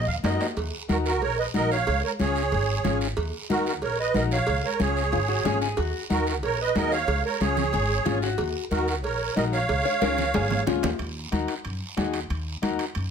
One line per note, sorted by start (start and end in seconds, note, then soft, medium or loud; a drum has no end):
0.07 0.21 D#2 medium
0.07 0.15 F5 loud
0.23 0.37 F#2 medium
0.23 0.47 D#4 medium
0.23 0.47 F#4 medium
0.23 0.47 A#4 medium
0.23 0.47 D#5 medium
0.23 high conga medium
0.23 low timbale medium
0.23 short guiro medium
0.41 low timbale medium
0.41 short guiro medium
0.57 0.70 D#2 medium
0.57 cowbell loud
0.57 high conga soft
0.57 long guiro medium
0.89 1.22 D#2 medium
0.89 1.12 D#4 medium
0.89 1.12 F#4 medium
0.89 0.97 F#4 medium
0.89 0.97 A#4 medium
0.89 1.12 A#4 medium
0.89 high conga medium
0.89 short guiro medium
1.06 1.21 F#4 medium
1.06 1.21 A#4 medium
1.06 short guiro medium
1.22 1.48 A#1 medium
1.22 1.38 A#4 medium
1.22 1.37 C#5 medium
1.22 cowbell medium
1.22 high conga soft
1.22 long guiro medium
1.39 1.46 B4 medium
1.39 1.46 D#5 medium
1.54 1.81 A#1 medium
1.54 1.77 D#4 medium
1.54 1.77 F#4 medium
1.54 1.78 A#4 medium
1.54 1.70 A#4 medium
1.54 1.70 D#5 medium
1.54 high conga medium
1.54 short guiro medium
1.71 2.02 C#5 medium
1.71 2.01 F5 loud
1.71 short guiro medium
1.87 2.01 C#2 medium
1.87 cowbell loud
1.87 high conga soft
1.87 long guiro medium
2.04 2.12 A#4 medium
2.04 2.11 C#5 medium
2.19 2.53 C#2 medium
2.19 2.42 C#4 medium
2.19 2.43 F4 medium
2.19 2.43 G#4 medium
2.19 2.98 G#4 medium
2.19 2.98 C#5 medium
2.19 high conga medium
2.19 short guiro medium
2.36 short guiro medium
2.52 2.78 G#1 medium
2.52 cowbell medium
2.52 high conga soft
2.52 long guiro medium
2.84 3.11 G#1 medium
2.84 3.08 C#4 medium
2.84 3.08 F4 medium
2.84 3.08 G#4 medium
2.84 high conga medium
2.84 low conga medium
2.84 short guiro medium
3.01 short guiro medium
3.17 3.30 D#2 medium
3.17 cowbell loud
3.17 high conga soft
3.17 long guiro medium
3.50 3.83 D#2 medium
3.50 3.73 D#4 medium
3.50 3.73 F#4 medium
3.50 3.65 F#4 medium
3.50 3.73 A#4 medium
3.50 3.65 A#4 medium
3.50 high conga medium
3.50 short guiro medium
3.66 3.74 F#4 medium
3.66 3.74 A#4 medium
3.66 short guiro medium
3.82 4.09 A#1 medium
3.82 3.98 A#4 medium
3.82 3.99 C#5 medium
3.82 cowbell medium
3.82 high conga soft
3.82 long guiro medium
4.00 4.15 B4 medium
4.00 4.15 D#5 medium
4.14 4.41 A#1 medium
4.14 4.38 D#4 medium
4.14 4.38 F#4 medium
4.14 4.38 A#4 medium
4.14 4.23 A#4 medium
4.14 4.23 D#5 medium
4.14 high conga medium
4.14 short guiro medium
4.31 4.62 C#5 medium
4.31 4.65 F5 loud
4.31 short guiro medium
4.47 4.61 C#2 medium
4.47 cowbell loud
4.47 high conga soft
4.47 long guiro medium
4.65 4.80 A#4 medium
4.65 4.79 C#5 medium
4.80 5.14 C#2 medium
4.80 5.03 C#4 medium
4.80 5.03 F4 medium
4.80 5.03 G#4 medium
4.80 5.58 G#4 medium
4.80 5.58 C#5 medium
4.80 high conga medium
4.80 short guiro medium
4.97 short guiro medium
5.12 5.39 G#1 medium
5.12 5.18 F4 medium
5.12 cowbell medium
5.12 high conga soft
5.12 long guiro medium
5.28 5.45 F#4 medium
5.44 5.71 G#1 medium
5.44 5.68 C#4 medium
5.44 5.68 F4 medium
5.44 5.68 G#4 medium
5.44 5.60 G#4 medium
5.44 high conga medium
5.44 low conga medium
5.44 low timbale medium
5.44 short guiro medium
5.61 5.79 G#4 medium
5.61 short guiro medium
5.77 5.91 D#2 medium
5.77 6.02 F#4 medium
5.77 cowbell loud
5.77 high conga soft
5.77 long guiro medium
6.10 6.43 D#2 medium
6.10 6.33 D#4 medium
6.10 6.33 F#4 medium
6.10 6.26 F#4 medium
6.10 6.33 A#4 medium
6.10 6.26 A#4 medium
6.10 high conga medium
6.10 short guiro medium
6.27 6.35 F#4 medium
6.27 6.35 A#4 medium
6.27 short guiro medium
6.43 6.69 A#1 medium
6.43 6.59 A#4 medium
6.43 6.59 C#5 medium
6.43 cowbell medium
6.43 high conga soft
6.43 long guiro medium
6.61 6.75 B4 medium
6.61 6.75 D#5 loud
6.75 7.02 D#2 medium
6.75 6.98 D#4 medium
6.75 6.99 F#4 medium
6.75 6.99 G#4 medium
6.75 6.92 A#4 medium
6.75 6.93 D#5 loud
6.75 high conga medium
6.75 low timbale medium
6.75 short guiro medium
6.92 7.22 C#5 medium
6.92 7.22 F5 loud
6.92 short guiro medium
7.07 7.21 C#2 medium
7.07 cowbell loud
7.07 high conga soft
7.07 long guiro medium
7.25 7.40 A#4 medium
7.25 7.39 C#5 medium
7.40 7.75 C#2 medium
7.40 7.64 C#4 medium
7.40 7.64 F4 medium
7.40 8.18 G#4 medium
7.40 7.64 G#4 medium
7.40 8.18 C#5 medium
7.40 high conga medium
7.40 short guiro medium
7.57 low conga medium
7.57 short guiro medium
7.73 8.00 G#1 loud
7.73 8.07 G#4 loud
7.73 cowbell medium
7.73 high conga soft
7.73 long guiro medium
8.05 8.32 G#1 medium
8.05 8.29 C#4 medium
8.05 8.23 F4 medium
8.05 8.29 F4 medium
8.05 8.29 G#4 medium
8.05 high conga medium
8.05 low conga medium
8.05 low timbale medium
8.05 short guiro medium
8.22 8.64 F#4 medium
8.22 short guiro medium
8.38 8.52 D#2 medium
8.38 cowbell loud
8.38 high conga soft
8.38 long guiro medium
8.71 9.04 D#2 medium
8.71 8.94 D#4 medium
8.71 8.94 F#4 medium
8.71 8.87 F#4 medium
8.71 8.86 A#4 medium
8.71 8.94 A#4 medium
8.71 high conga medium
8.71 short guiro medium
8.87 8.95 F#4 medium
8.87 8.95 A#4 medium
8.87 short guiro medium
9.03 9.30 A#1 loud
9.03 9.34 A#4 medium
9.03 9.34 C#5 medium
9.03 cowbell medium
9.03 high conga soft
9.03 long guiro medium
9.36 9.62 A#1 medium
9.36 9.59 D#4 medium
9.36 9.59 F#4 medium
9.36 9.59 A#4 medium
9.36 9.44 A#4 medium
9.36 9.44 D#5 medium
9.36 high conga medium
9.36 low timbale medium
9.36 short guiro medium
9.53 10.63 C#5 medium
9.53 10.63 F5 loud
9.53 short guiro medium
9.69 9.82 C#2 medium
9.69 cowbell loud
9.69 high conga soft
9.69 long guiro medium
9.85 10.02 C#5 loud
10.01 10.36 C#2 medium
10.01 10.24 C#4 medium
10.01 10.25 F4 medium
10.01 10.25 G#4 medium
10.01 10.34 A#4 loud
10.01 high conga medium
10.01 high timbale medium
10.01 short guiro medium
10.18 low conga medium
10.18 short guiro medium
10.34 10.60 G#1 medium
10.34 10.65 G#4 medium
10.34 cowbell medium
10.34 high conga medium
10.34 low timbale loud
10.34 long guiro medium
10.50 low conga medium
10.50 low timbale medium
10.67 10.82 C#2 medium
10.67 10.90 C#4 medium
10.67 10.97 F4 medium
10.67 10.90 F4 medium
10.67 10.90 G#4 medium
10.67 low conga medium
10.67 low timbale medium
10.67 short guiro medium
10.83 10.98 D#2 medium
10.83 low conga loud
10.83 low timbale medium
10.83 short guiro medium
10.99 11.25 D#2 medium
10.99 high conga soft
10.99 high timbale medium
10.99 long guiro medium
11.31 11.45 D#2 medium
11.31 11.55 D#4 medium
11.31 11.55 F#4 medium
11.31 11.55 A#4 medium
11.31 high conga medium
11.31 high timbale medium
11.31 short guiro medium
11.48 high timbale medium
11.48 short guiro medium
11.65 11.78 F#2 medium
11.65 high conga soft
11.65 high timbale medium
11.65 long guiro medium
11.97 12.23 D#2 medium
11.97 12.20 D#4 medium
11.97 12.20 F#4 medium
11.97 12.20 G#4 medium
11.97 high conga medium
11.97 high timbale medium
11.97 low timbale medium
11.97 short guiro medium
12.13 high timbale medium
12.13 short guiro medium
12.30 12.56 D#2 medium
12.30 high conga soft
12.30 high timbale medium
12.30 long guiro medium
12.62 12.76 D#2 medium
12.62 12.85 D#4 medium
12.62 12.85 F#4 medium
12.62 12.86 A#4 medium
12.62 high conga medium
12.62 high timbale medium
12.62 short guiro medium
12.79 high timbale medium
12.79 short guiro medium
12.95 13.09 F#2 medium
12.95 high conga soft
12.95 high timbale medium
12.95 long guiro medium